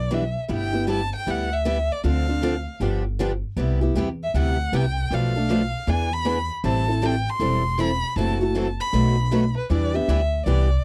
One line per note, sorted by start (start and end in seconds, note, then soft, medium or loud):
0.00 0.35 B1 medium
0.00 0.15 D5 medium
0.11 0.23 E3 medium
0.11 0.23 G3 medium
0.11 0.23 B3 medium
0.11 0.23 D4 medium
0.11 0.23 E4 medium
0.11 0.23 G4 medium
0.11 0.23 B4 medium
0.11 0.44 E5 medium
0.48 1.11 G1 medium
0.48 0.71 G3 medium
0.48 0.71 B3 medium
0.48 0.71 E4 medium
0.48 0.71 G4 medium
0.54 0.88 G5 medium
0.73 0.86 B3 soft
0.73 0.86 E4 soft
0.73 0.87 G4 medium
0.87 0.99 G3 medium
0.87 0.99 B3 medium
0.87 0.99 E4 medium
0.87 1.00 G4 medium
0.87 1.13 A5 medium
1.16 1.31 G5 medium
1.27 1.88 D2 medium
1.27 1.48 G3 medium
1.27 1.49 B3 medium
1.27 1.49 E4 medium
1.27 1.49 G4 medium
1.27 1.55 F#5 medium
1.53 1.93 E5 medium
1.65 1.77 G3 medium
1.65 1.77 B3 medium
1.65 1.77 E4 medium
1.65 1.77 G4 medium
1.92 2.05 D5 medium
2.04 2.65 D2 medium
2.04 2.25 D3 medium
2.04 2.25 F3 medium
2.04 2.25 C4 medium
2.04 2.25 D4 medium
2.04 2.26 A4 medium
2.04 2.78 F5 medium
2.28 2.42 C4 soft
2.28 2.42 D4 medium
2.28 2.42 A4 soft
2.43 2.54 D3 medium
2.43 2.54 F3 medium
2.43 2.54 C4 medium
2.43 2.54 D4 medium
2.43 2.54 A4 medium
2.80 3.42 G1 medium
2.80 3.02 D3 medium
2.80 3.02 F3 medium
2.80 3.02 B3 medium
2.80 3.02 D4 medium
2.80 3.02 G4 medium
3.19 3.30 D3 medium
3.19 3.31 F3 medium
3.19 3.31 B3 medium
3.19 3.31 D4 medium
3.19 3.31 G4 medium
3.56 3.88 C2 medium
3.56 3.78 C3 medium
3.56 3.78 G3 medium
3.56 3.79 B3 medium
3.56 3.79 E4 medium
3.56 3.79 G4 medium
3.81 3.95 B3 soft
3.81 3.95 E4 medium
3.81 3.95 G4 medium
3.95 4.28 E2 medium
3.95 4.07 C3 medium
3.95 4.07 G3 medium
3.95 4.07 B3 medium
3.95 4.07 E4 medium
3.95 4.08 G4 medium
4.23 4.35 E5 medium
4.34 4.67 D2 medium
4.34 4.56 C3 medium
4.34 4.56 G3 medium
4.34 4.56 B3 medium
4.34 4.56 E4 medium
4.34 4.56 G4 medium
4.34 4.77 F#5 medium
4.72 5.05 C2 medium
4.72 4.84 C3 medium
4.72 4.84 G3 medium
4.72 4.84 B3 medium
4.72 4.84 E4 medium
4.72 4.85 G4 medium
4.72 5.15 G5 medium
5.11 5.72 B1 medium
5.11 5.33 B2 medium
5.11 5.33 F3 medium
5.11 5.33 A3 medium
5.11 5.33 D4 medium
5.11 5.33 A4 medium
5.11 5.33 B4 medium
5.11 5.91 F5 medium
5.36 5.49 A3 soft
5.36 5.50 D4 soft
5.36 5.49 A4 soft
5.50 5.61 B2 medium
5.50 5.61 F3 medium
5.50 5.61 A3 medium
5.50 5.61 D4 medium
5.50 5.61 A4 medium
5.50 5.61 B4 medium
5.87 6.49 E2 medium
5.87 6.09 E3 medium
5.87 6.09 B3 medium
5.87 6.09 D4 medium
5.87 6.09 G#4 medium
5.87 6.09 B4 medium
5.87 6.14 G#5 medium
6.13 6.50 B5 loud
6.25 6.37 E3 medium
6.25 6.37 B3 medium
6.25 6.37 D4 medium
6.25 6.37 G#4 medium
6.25 6.37 B4 medium
6.64 7.25 A1 medium
6.64 6.85 E3 medium
6.64 6.85 G3 medium
6.64 6.85 C4 medium
6.64 6.86 E4 medium
6.64 6.86 A4 medium
6.64 7.07 A5 loud
6.88 7.02 C4 soft
6.88 7.02 E4 soft
6.88 7.02 A4 medium
7.02 7.13 E3 medium
7.02 7.14 G3 medium
7.02 7.14 C4 medium
7.02 7.14 E4 medium
7.02 7.14 A4 medium
7.02 7.31 G5 medium
7.30 7.81 C6 loud
7.40 8.01 E1 medium
7.40 7.62 E3 medium
7.40 7.62 G3 medium
7.40 7.62 C4 medium
7.40 7.62 E4 medium
7.40 7.62 A4 medium
7.79 7.90 E3 medium
7.79 7.90 G3 medium
7.79 7.90 C4 medium
7.79 7.90 E4 medium
7.79 7.91 A4 medium
7.79 8.18 B5 loud
8.16 8.78 F#1 medium
8.16 8.39 C3 medium
8.16 8.39 E3 medium
8.16 8.38 F#3 medium
8.16 8.39 A3 medium
8.16 8.38 C4 medium
8.16 8.39 E4 medium
8.16 8.39 F#4 medium
8.16 8.38 A4 medium
8.16 8.41 A5 medium
8.41 8.54 A3 soft
8.41 8.54 E4 soft
8.41 8.55 F#4 medium
8.45 8.68 A5 medium
8.55 8.66 C3 medium
8.55 8.66 E3 medium
8.55 8.66 F#3 medium
8.55 8.66 A3 medium
8.55 8.67 C4 medium
8.55 8.67 E4 medium
8.55 8.67 F#4 medium
8.55 8.67 A4 medium
8.80 9.52 B5 loud
8.93 9.54 B1 medium
8.93 9.15 B2 medium
8.93 9.15 F#3 medium
8.93 9.15 A3 medium
8.93 9.15 D#4 medium
8.93 9.15 F#4 medium
8.93 9.15 B4 medium
9.31 9.43 B2 medium
9.31 9.43 F#3 medium
9.31 9.43 A3 medium
9.31 9.43 D#4 medium
9.31 9.43 F#4 medium
9.31 9.44 B4 medium
9.57 9.70 B4 medium
9.70 10.01 E2 medium
9.70 9.91 E3 medium
9.70 9.91 G3 medium
9.70 9.91 B3 medium
9.70 9.92 D4 medium
9.70 9.92 E4 medium
9.70 9.92 G4 medium
9.70 9.92 B4 medium
9.70 9.97 D5 medium
9.94 10.08 B3 soft
9.94 10.08 D4 soft
9.94 10.08 G4 medium
9.94 10.46 E5 medium
10.08 10.41 D2 medium
10.08 10.20 E3 medium
10.08 10.20 G3 medium
10.08 10.20 B3 medium
10.08 10.20 D4 medium
10.08 10.20 E4 loud
10.08 10.20 G4 medium
10.08 10.20 B4 loud
10.46 10.79 C2 medium
10.46 10.67 E3 medium
10.46 10.68 G3 medium
10.46 10.68 B3 medium
10.46 10.68 D4 medium
10.46 10.68 E4 medium
10.46 10.68 G4 medium
10.46 10.68 B4 medium
10.46 10.82 D5 medium